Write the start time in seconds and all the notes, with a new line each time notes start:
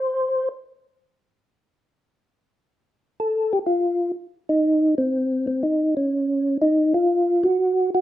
Already playing: C5
3.20 A4
3.53 G4
3.67 F4
4.49 D#4
4.98 C4
5.47 C4
5.63 D#4
5.97 C#4
6.62 D#4
6.94 F4
7.43 F#4
7.95 F#4